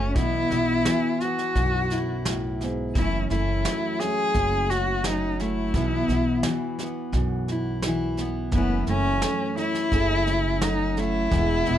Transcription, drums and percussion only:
0.16 kick, snare
0.51 snare
0.85 snare
1.20 snare
1.38 snare
1.55 kick, snare
1.90 snare
2.25 snare
2.61 snare
2.95 kick, snare
3.30 snare
3.65 snare
4.00 snare
4.34 kick, snare
4.70 snare
5.04 snare
5.40 snare
5.74 kick, snare
6.09 snare
6.43 snare
6.79 snare
7.13 kick, snare
7.48 snare
7.82 snare
8.17 snare
8.52 kick, snare
8.87 snare
9.22 snare
9.57 snare
9.74 snare
9.92 kick, snare
10.27 snare
10.61 snare
10.97 snare
11.31 kick, snare
11.66 snare

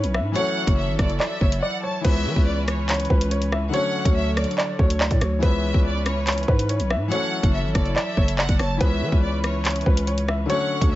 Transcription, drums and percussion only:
0.04 closed hi-hat
0.14 cross-stick
0.36 closed hi-hat
0.67 kick, closed hi-hat
0.99 kick, cross-stick, closed hi-hat
1.10 closed hi-hat
1.20 clap
1.41 kick
1.52 closed hi-hat
2.05 kick, closed hi-hat, crash
2.36 kick
2.68 cross-stick, closed hi-hat
2.89 clap, closed hi-hat
2.94 closed hi-hat
3.00 closed hi-hat
3.05 closed hi-hat
3.10 kick
3.21 closed hi-hat
3.31 closed hi-hat
3.42 closed hi-hat
3.52 cross-stick
3.74 closed hi-hat
4.05 kick, closed hi-hat
4.37 cross-stick, closed hi-hat
4.44 closed hi-hat
4.51 closed hi-hat
4.58 clap
4.79 kick
4.90 closed hi-hat
5.00 clap
5.11 kick, closed hi-hat
5.21 cross-stick, closed hi-hat
5.43 kick, closed hi-hat
5.74 kick
6.06 cross-stick, closed hi-hat
6.27 clap, closed hi-hat
6.32 closed hi-hat
6.38 closed hi-hat
6.43 closed hi-hat
6.48 kick
6.59 closed hi-hat
6.69 closed hi-hat
6.80 closed hi-hat
6.90 cross-stick
7.12 closed hi-hat
7.43 kick, closed hi-hat
7.75 kick, cross-stick, closed hi-hat
7.86 closed hi-hat
7.96 clap
8.17 kick
8.28 closed hi-hat
8.38 clap
8.49 kick, closed hi-hat
8.59 cross-stick, open hi-hat
8.81 kick, closed hi-hat
9.12 kick
9.44 cross-stick, closed hi-hat
9.65 clap, closed hi-hat
9.70 closed hi-hat
9.76 closed hi-hat
9.81 closed hi-hat
9.86 kick
9.97 closed hi-hat
10.07 closed hi-hat
10.18 closed hi-hat
10.28 cross-stick
10.50 closed hi-hat
10.81 kick, closed hi-hat

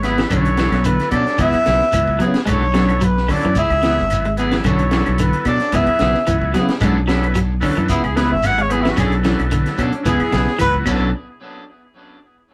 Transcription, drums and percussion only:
0.03 snare, closed hi-hat, shekere
0.18 snare, closed hi-hat
0.31 kick, closed hi-hat, claves, shekere
0.45 closed hi-hat
0.57 snare, closed hi-hat, shekere
0.72 snare, closed hi-hat, claves
0.84 closed hi-hat, shekere
1.00 snare, closed hi-hat
1.11 kick, closed hi-hat, claves, shekere
1.27 snare, closed hi-hat
1.38 kick, closed hi-hat, shekere
1.53 kick, closed hi-hat, claves
1.66 snare, closed hi-hat, shekere
1.81 snare
1.93 closed hi-hat, claves, shekere
2.08 kick
2.20 closed hi-hat, shekere
2.34 snare, closed hi-hat
2.47 kick, closed hi-hat, claves, shekere
2.74 snare, closed hi-hat, shekere
2.89 closed hi-hat, claves
3.01 closed hi-hat, shekere
3.17 snare
3.28 kick, open hi-hat, claves, shekere
3.43 closed hi-hat
3.55 kick, closed hi-hat, shekere
3.70 kick, closed hi-hat, claves
3.83 snare, closed hi-hat, shekere
3.98 snare
4.10 closed hi-hat, claves, shekere
4.25 closed hi-hat
4.37 closed hi-hat, shekere
4.51 snare, closed hi-hat
4.64 kick, closed hi-hat, claves, shekere
4.79 closed hi-hat
4.91 snare, closed hi-hat, shekere
5.06 closed hi-hat, claves
5.18 closed hi-hat, shekere
5.33 closed hi-hat
5.45 kick, closed hi-hat, claves, shekere
5.60 snare, closed hi-hat
5.72 kick, closed hi-hat, shekere
5.87 kick, closed hi-hat, claves
5.99 snare, closed hi-hat, shekere
6.14 snare
6.27 closed hi-hat, claves, shekere
6.42 kick
6.54 snare, closed hi-hat, shekere
6.69 snare, closed hi-hat
6.81 kick, closed hi-hat, claves, shekere
7.09 snare, closed hi-hat, shekere
7.23 closed hi-hat, claves
7.35 closed hi-hat, shekere
7.62 kick, open hi-hat, claves, shekere
7.77 closed hi-hat
7.89 kick, closed hi-hat, shekere
8.04 kick, closed hi-hat, claves
8.17 snare, closed hi-hat, shekere
8.43 snare, closed hi-hat, claves, shekere
8.58 closed hi-hat
8.70 closed hi-hat, shekere
8.85 snare, closed hi-hat
8.97 kick, closed hi-hat, claves, shekere
9.12 closed hi-hat
9.24 snare, closed hi-hat, shekere
9.39 closed hi-hat, claves
9.51 closed hi-hat, shekere
9.66 snare, closed hi-hat
9.78 kick, closed hi-hat, claves, shekere
9.93 closed hi-hat
10.05 kick, closed hi-hat, shekere
10.20 kick, closed hi-hat, claves
10.33 snare, closed hi-hat, shekere
10.47 snare
10.59 closed hi-hat, claves, shekere
10.74 kick
10.86 kick, crash, claves, shekere

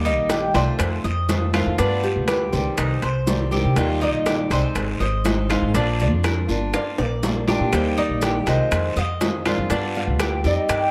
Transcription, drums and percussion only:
0.05 high conga, maracas
0.29 high bongo, high conga, high timbale, short guiro, maracas
0.54 high bongo, high conga, high timbale, short guiro, maracas
0.79 high bongo, high conga, high timbale, long guiro, claves, maracas
1.04 high bongo, high conga, maracas
1.29 high bongo, low bongo, high conga, high timbale, low timbale, short guiro, maracas
1.53 high bongo, high conga, high timbale, short guiro, claves, maracas
1.78 high bongo, high conga, high timbale, long guiro, maracas
2.03 maracas
2.28 high bongo, high conga, high timbale, short guiro, claves, maracas
2.53 high bongo, high conga, short guiro, maracas
2.78 high bongo, high conga, high timbale, long guiro, claves, maracas
3.02 high bongo, high conga, high timbale, maracas
3.27 high bongo, low bongo, high conga, low timbale, short guiro, maracas
3.52 high bongo, high conga, short guiro, maracas
3.76 high bongo, high conga, high timbale, long guiro, claves, maracas
4.01 maracas
4.26 high bongo, high conga, high timbale, short guiro, maracas
4.51 high bongo, high conga, high timbale, short guiro, maracas
4.75 high bongo, high conga, high timbale, long guiro, claves, maracas
5.00 high bongo, high conga, maracas
5.25 high bongo, low bongo, high conga, high timbale, low timbale, short guiro, maracas
5.49 high bongo, high conga, high timbale, short guiro, claves, maracas
5.74 high bongo, high timbale, long guiro, maracas
5.99 high conga, maracas
6.24 high bongo, high conga, high timbale, short guiro, claves, maracas
6.49 high bongo, high conga, short guiro, maracas
6.74 high bongo, high conga, high timbale, long guiro, claves, maracas
6.98 high bongo, high conga, high timbale, maracas
7.23 high bongo, high conga, low timbale, short guiro, maracas
7.48 low bongo, high conga, low timbale, short guiro, maracas
7.73 high bongo, high conga, high timbale, long guiro, claves, maracas
7.97 maracas
8.21 high bongo, high conga, high timbale, short guiro, maracas
8.46 high bongo, high conga, high timbale, short guiro, maracas
8.71 high bongo, high conga, high timbale, long guiro, claves, maracas
8.96 high bongo, high conga, maracas
9.21 high bongo, low bongo, high conga, high timbale, low timbale, short guiro, maracas
9.46 high bongo, high conga, high timbale, short guiro, claves, maracas
9.70 high bongo, high conga, high timbale, long guiro, maracas
9.95 high conga, maracas
10.19 high bongo, high conga, high timbale, short guiro, claves, maracas
10.44 high bongo, high conga, short guiro, maracas
10.69 high bongo, high conga, high timbale, long guiro, claves, maracas

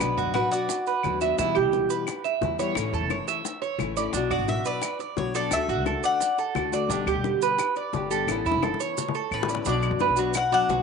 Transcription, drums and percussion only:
0.00 high bongo, claves, maracas
0.18 maracas
0.35 high bongo, claves, maracas
0.52 high bongo, maracas
0.69 high bongo, maracas
0.86 high bongo, maracas
1.03 high bongo, low bongo, claves, maracas
1.21 high bongo, maracas
1.39 high bongo, maracas
1.55 claves, maracas
1.73 high bongo, maracas
1.90 high bongo, maracas
2.07 high bongo, claves, maracas
2.25 high bongo, maracas
2.42 high bongo, low bongo, maracas
2.58 high bongo, maracas
2.75 high bongo, claves, maracas
2.94 maracas
3.10 high bongo, claves, maracas
3.27 high bongo, maracas
3.45 high bongo, maracas
3.62 high bongo, maracas
3.79 high bongo, low bongo, claves, maracas
3.96 high bongo, maracas
4.13 high bongo, maracas
4.31 claves, maracas
4.48 high bongo, maracas
4.65 high bongo, maracas
4.82 high bongo, claves, maracas
4.99 high bongo, maracas
5.17 high bongo, low bongo, maracas
5.34 high bongo, maracas
5.51 high bongo, claves, maracas
5.69 maracas
5.86 high bongo, claves, maracas
6.03 high bongo, maracas
6.21 high bongo, maracas
6.38 high bongo, maracas
6.55 high bongo, low bongo, claves, maracas
6.73 high bongo, maracas
6.90 high bongo, maracas
7.07 claves, maracas
7.24 high bongo, maracas
7.42 high bongo, maracas
7.59 high bongo, claves, maracas
7.76 high bongo, maracas
7.93 high bongo, low bongo, maracas
8.11 high bongo, maracas
8.28 high bongo, claves, maracas
8.46 maracas
8.51 high bongo
8.62 high bongo, claves, maracas
8.74 high bongo
8.80 maracas
8.98 low bongo, maracas
9.08 low bongo
9.14 maracas
9.32 claves, maracas
9.43 low bongo
9.49 maracas
9.55 low bongo
9.65 high bongo, maracas
9.82 claves, maracas
9.99 high bongo, maracas
10.16 maracas
10.34 high bongo, claves, maracas
10.52 maracas
10.69 high bongo, low bongo, maracas

